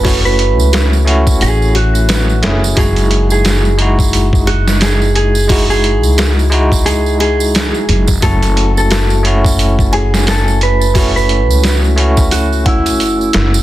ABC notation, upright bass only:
X:1
M:4/4
L:1/16
Q:"Swing 16ths" 1/4=88
K:F#dor
V:1 name="Upright bass" clef=bass
F,,,3 C,,4- C,, A,,,6 F,,,2 | F,,,16- | F,,,3 C,,8- C,,2 z F,,,2 | F,,,16- |
F,,,3 C,,8- C,, F,,,2 F,,,2 |]